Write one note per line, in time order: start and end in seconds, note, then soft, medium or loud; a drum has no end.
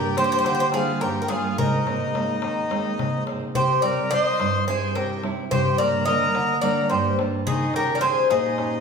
0.00 0.15 G2 medium
0.00 0.16 G3 soft
0.00 0.17 A#3 soft
0.00 0.17 D4 medium
0.00 0.16 G4 medium
0.00 0.17 A#4 medium
0.17 0.63 G3 medium
0.17 0.63 A#3 soft
0.17 0.63 D4 medium
0.17 0.70 G4 loud
0.17 0.23 C5 loud
0.17 darbuka tek medium
0.24 0.31 C5 medium
0.31 0.37 C5 loud
0.31 darbuka tek soft
0.39 0.45 C5 medium
0.44 1.00 D3 medium
0.44 0.53 C5 medium
0.44 darbuka tek medium
0.55 0.59 C5 medium
0.60 0.67 C5 medium
0.72 1.19 G3 soft
0.72 1.19 A#3 soft
0.72 1.19 D4 medium
0.72 1.00 F4 medium
0.72 1.00 G#4 medium
0.72 darbuka tek medium
1.01 1.57 G2 medium
1.01 1.21 G4 medium
1.01 1.21 A#4 medium
1.01 darbuka tek medium
1.16 darbuka tek soft
1.22 1.29 G4 medium
1.22 1.28 A#4 medium
1.28 1.52 G3 soft
1.28 1.53 A#3 soft
1.28 1.53 D4 soft
1.28 1.57 F4 medium
1.28 1.58 G#4 medium
1.28 darbuka tek medium
1.58 2.13 G#2 medium
1.58 3.24 D#4 medium
1.58 3.23 A#4 medium
1.58 darbuka dum medium
1.73 darbuka tek soft
1.87 2.14 G#3 soft
1.87 2.15 A#3 soft
1.87 2.15 C4 medium
1.87 darbuka tek medium
2.01 darbuka tek soft
2.15 2.60 G#3 soft
2.15 2.61 A#3 soft
2.15 2.61 C4 medium
2.15 darbuka tek medium
2.29 darbuka tek soft
2.42 2.98 D#3 medium
2.42 darbuka tek medium
2.57 darbuka tek soft
2.71 3.16 G#3 soft
2.71 3.17 A#3 soft
2.71 3.17 C4 medium
2.71 darbuka tek medium
2.86 darbuka tek soft
2.99 3.54 G#2 medium
2.99 darbuka tek medium
2.99 darbuka dum medium
3.27 3.50 G#3 soft
3.27 3.50 A#3 soft
3.27 3.51 C4 soft
3.27 darbuka tek medium
3.55 4.10 C3 medium
3.55 3.82 G4 medium
3.55 3.82 C5 medium
3.55 darbuka dum medium
3.82 4.11 G3 medium
3.82 4.11 C4 soft
3.82 4.12 E4 soft
3.82 4.10 A#4 medium
3.82 4.09 D5 medium
3.82 darbuka tek medium
4.11 4.57 G3 soft
4.11 4.57 C4 soft
4.11 4.57 E4 soft
4.11 4.64 C5 loud
4.11 4.67 D#5 loud
4.11 darbuka tek medium
4.26 darbuka tek soft
4.40 4.94 G2 medium
4.40 darbuka tek medium
4.68 5.13 G3 medium
4.68 5.13 C4 soft
4.68 5.13 E4 medium
4.68 4.94 G#4 medium
4.68 4.97 C5 medium
4.95 5.50 C3 medium
4.95 5.23 G4 medium
4.95 5.22 A#4 medium
4.95 darbuka tek medium
5.10 darbuka tek soft
5.23 5.46 G3 soft
5.23 5.46 C4 soft
5.23 5.47 E4 medium
5.23 darbuka tek medium
5.51 6.06 G2 medium
5.51 5.78 G4 medium
5.51 5.78 C5 medium
5.51 darbuka dum loud
5.78 6.06 G3 soft
5.78 6.06 A#3 soft
5.78 6.25 D4 medium
5.78 6.05 A#4 medium
5.78 6.05 D5 medium
5.78 darbuka tek medium
6.05 6.33 D3 medium
6.05 6.52 G3 soft
6.05 6.52 A#3 soft
6.05 6.59 A#4 loud
6.05 6.59 D#5 medium
6.05 darbuka tek medium
6.21 darbuka tek soft
6.35 6.89 D3 medium
6.35 darbuka tek medium
6.61 7.08 G3 medium
6.61 7.08 A#3 soft
6.61 7.08 D4 medium
6.61 6.90 A#4 medium
6.61 6.89 D5 medium
6.61 darbuka tek medium
6.90 7.46 G2 medium
6.90 7.17 G4 medium
6.90 7.17 C5 medium
6.90 darbuka tek medium
7.05 darbuka tek soft
7.19 7.41 G3 soft
7.19 7.42 A#3 soft
7.19 7.42 D4 medium
7.19 darbuka tek medium
7.47 8.02 D#3 medium
7.47 7.73 D#4 medium
7.47 7.76 G#4 loud
7.47 darbuka dum medium
7.74 8.01 C#4 soft
7.74 8.02 D#4 soft
7.74 7.95 G4 medium
7.74 8.03 G4 medium
7.74 7.98 A#4 loud
7.74 darbuka tek medium
7.95 8.02 A#4 medium
7.95 8.01 D5 medium
8.01 8.47 C#4 soft
8.01 8.48 D#4 soft
8.01 8.48 G4 medium
8.01 8.29 G#4 loud
8.01 8.31 C5 medium
8.01 darbuka tek medium
8.17 darbuka tek soft
8.30 8.80 A#2 medium
8.30 8.80 D#4 medium
8.30 8.80 G#4 medium
8.30 darbuka tek medium
8.58 8.80 C#4 soft
8.58 8.80 D#4 soft
8.58 8.80 G4 soft
8.58 darbuka tek medium